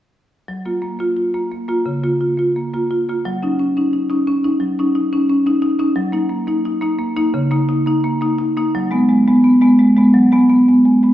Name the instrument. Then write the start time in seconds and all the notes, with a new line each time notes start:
marimba
0.48 F#3
0.65 A#3 F4
0.82 A#3
0.99 A#3 F4
1.17 F4
1.34 A#3 F4
1.51 A#3
1.68 A#3 F4
1.86 C#3
2.04 A#3 F4
2.21 F4
2.38 A#3 F4
2.56 A#3
2.74 A#3 F4
2.91 F4
3.09 A#3 F4
3.25 F#3
3.43 C#4 D#4
3.59 C#4
3.77 C#4 D#4
3.93 D#4
4.10 C#4 D#4
4.27 C#4
4.44 C#4 D#4
4.60 F#3
4.79 C#4 D#4
4.95 D#4
5.13 C#4 D#4
5.29 C#4
5.46 C#4 D#4
5.62 D#4
5.79 C#4 D#4
5.96 F#3
6.12 A#3 D#4
6.29 A#3
6.47 A#3 D#4
6.65 D#4
6.81 A#3 D#4
6.99 A#3
7.17 A#3 D#4
7.34 C#3
7.51 A#3 D#4
7.69 D#4
7.86 A#3 D#4
8.04 A#3
8.21 A#3 D#4
8.39 D#4
8.57 A#3 D#4
8.75 F#3
8.91 G#3 B3
9.09 G#3
9.28 G#3 B3
9.44 B3
9.61 G#3 B3
9.79 G#3
9.97 G#3 B3
10.14 F#3
10.32 G#3 B3
10.50 B3
10.68 G#3 B3
10.85 G#3
11.03 G#3 B3